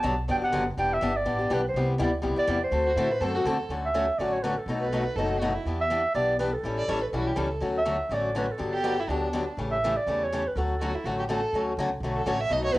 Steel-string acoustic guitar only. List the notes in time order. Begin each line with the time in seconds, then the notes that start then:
0.03 D3 F#3 B3 D4 G4
0.28 D3 F#3 B3 D4 G4
0.42 B3 D4 G4
0.52 D3 F#3 B3 D4 G4
0.78 E3 B3 D4 G4
1.01 E3 B3 D4 G4
1.25 E3 B3 D4 G4
1.39 B3 D4 G4
1.50 E3 B3 D4 G4
1.76 C3 G3 B3 E4 G4
1.98 C3 G3 B3 E4 G4
2.22 C3 G3 B3 E4 G4
2.36 B3 E4 G4
2.47 C3 G3 B3 E4 G4
2.72 D3 A3 C4 F#4 A4
2.97 D3 A3 C4 F#4 A4
3.21 D3 A3 C4 F#4 A4
3.35 C4 F#4 A4
3.45 D3 A3 C4 F#4 A4
3.70 D3 F#3 A3 C#4 F#4
3.94 D3 F#3 A3 C#4 F#4
4.19 D3 F#3 A3 C#4 F#4
4.44 D3 F#3 A3 C#4 F#4
4.68 B2 F#3 A3 D#4 F#4
4.92 B2 F#3 A3 D#4 F#4
5.18 B2 F#3 A3 D#4 F#4
5.42 B2 F#3 A3 D#4 F#4
5.66 E3 B3 D4 G4
5.90 E3 B3 D4 G4
6.14 E3 B3 D4 G4
6.39 E3 B3 D4 G4
6.64 E3 G3 C#4 E4 A4
6.88 E3 G3 C#4 E4 A4
7.13 E3 G3 C#4 E4 A4
7.36 E3 G3 C#4 E4 A4
7.60 D3 F#3 A3 C#4 F#4
7.85 D3 F#3 A3 C#4 F#4
8.11 D3 F#3 A3 C#4 F#4
8.35 D3 F#3 A3 C#4 F#4
8.58 D3 F#3 B3 D4 G4
8.84 D3 F#3 B3 D4 G4
9.09 D3 F#3 B3 D4 G4
9.33 D3 F#3 B3 D4 G4
9.58 C#3 E3 A3 C#4 G4
9.84 C#3 E3 A3 C#4 G4
10.07 C#3 E3 A3 C#4 G4
10.32 C#3 E3 A3 C#4 G4
10.57 D3 F#3 A3 C#4 F#4
10.81 D3 F#3 A3 C#4 F#4
11.06 D3 F#3 A3 C#4 F#4
11.29 D3 F#3 A3 C#4 F#4
11.54 D3 F#3 A3 C#4 F#4
11.79 D3 F#3 A3 C#4 F#4
12.03 D3 F#3 A3 C#4 F#4
12.26 D3 F#3 A3 C#4 F#4
12.49 B2 F#3 A3 D#4 F#4
12.73 B2 F#3 A3 D#4 F#4